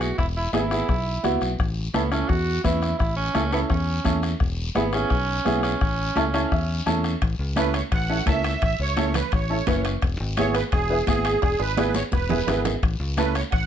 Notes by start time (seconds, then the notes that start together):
Already playing: B1
0.01 F#4, bombo rim, short guiro
0.18 E1 E4, bombo low, bombo rim, high conga, long guiro
0.36 E4
0.53 G#1 B3 E4 G#4, bombo rim, high conga, short guiro
0.71 B3 E4 G#4, bombo rim, short guiro
0.89 B1, bombo low, bombo rim, high conga, long guiro
1.23 C#2 B3 E4 F#4, bombo rim, high conga, short guiro
1.41 B1, bombo rim, short guiro
1.59 A1, bombo low, bombo rim, high conga, long guiro
1.94 C#2 B3 C#4 E4 A4, bombo rim, high conga, short guiro
2.11 C#4 E4 A4, bombo rim, short guiro
2.29 E2 F#4, bombo low, bombo rim, high conga, long guiro
2.64 E2 C#4 E4 B4, bombo low, bombo rim, high conga, short guiro
2.82 bombo rim, short guiro
2.98 A1 E4, bombo low, bombo rim, high conga, long guiro
3.16 C#4
3.34 C#2 C#4 E4 A4, bombo rim, high conga, short guiro
3.52 B3 C#4 E4 A4, bombo rim, short guiro
3.69 E2 C#4, bombo low, bombo rim, high conga, long guiro
4.04 E2 C#4 E4 A4, bombo low, bombo rim, high conga, short guiro
4.23 bombo rim, short guiro
4.40 E1, bombo low, bombo rim, high conga, long guiro
4.75 G#1 B3 E4 G#4, bombo rim, high conga, short guiro
4.92 B3 C#4 E4 G#4, bombo rim, short guiro
5.10 B1, bombo low, bombo rim, high conga, long guiro
5.45 B1 B3 E4 G#4, bombo rim, high conga, short guiro
5.63 C#4, bombo rim, short guiro
5.81 A1, bombo low, bombo rim, high conga, long guiro
6.16 C#2 C#4 E4 A4, bombo rim, high conga, short guiro
6.33 C#4 E4 A4 C#5, bombo rim, short guiro
6.51 E2 E5, bombo low, bombo rim, high conga, long guiro
6.86 E2 C#4 E4 A4 A5, bombo rim, high conga, short guiro
7.04 bombo rim, short guiro
7.22 A1, bombo low, bombo rim, high conga, high timbale, long guiro
7.39 C#2
7.56 C#4 E4 A4 B4, bombo rim, high conga, high timbale, short guiro
7.74 C#5, bombo rim, high timbale, short guiro
7.91 A1 F#5, bombo low, bombo rim, high conga, high timbale, long guiro
8.09 C#4 E4 A4
8.26 C#2 C#4 E4 A4 E5, bombo low, bombo rim, high conga, high timbale, low timbale, short guiro
8.44 bombo rim, high timbale, short guiro
8.62 A1 E5, bombo low, bombo rim, high conga, high timbale, long guiro
8.79 C#2 C#5
8.96 C#4 E4 A4, bombo rim, high conga, high timbale, short guiro
9.14 B4, bombo rim, low conga, high timbale, short guiro
9.32 A1 C#5, bombo low, bombo rim, high conga, high timbale, long guiro
9.49 C#4 E4 A4
9.67 F#1 C#4 E4 B4, bombo low, bombo rim, high conga, low conga, high timbale, low timbale, short guiro
9.84 bombo rim, high timbale, short guiro
10.02 E1, bombo low, bombo rim, high conga, high timbale, long guiro
10.20 G#1
10.37 B3 E4 G#4 C#5, bombo rim, high conga, high timbale, short guiro
10.54 B4, bombo rim, high timbale, short guiro
10.72 E1 G#4, bombo low, bombo rim, high conga, high timbale, long guiro
10.90 B3 E4 B4
11.07 G#1 B3 E4 G#4, bombo low, bombo rim, high conga, high timbale, short guiro
11.25 bombo rim, high timbale, short guiro
11.42 E1 G#4, bombo low, bombo rim, high conga, high timbale, long guiro
11.60 G#1 B4, high timbale
11.77 B3 E4 G#4, bombo rim, high conga, high timbale, short guiro
11.94 C#5, bombo rim, high conga, short guiro
12.12 E1 B4, bombo low, bombo rim, high conga, long guiro
12.29 B3 E4 G#4, low conga, low timbale
12.47 G#1 B3 E4 G#4, bombo rim, low conga, low timbale, short guiro
12.65 bombo rim, low conga, low timbale, short guiro
12.82 A1, bombo low, bombo rim, high conga, high timbale, long guiro
13.00 C#2
13.17 C#4 E4 A4 B4, bombo rim, high conga, high timbale, short guiro
13.35 C#5, bombo rim, high timbale, short guiro
13.52 A1 F#5, bombo low, bombo rim, high conga, high timbale, long guiro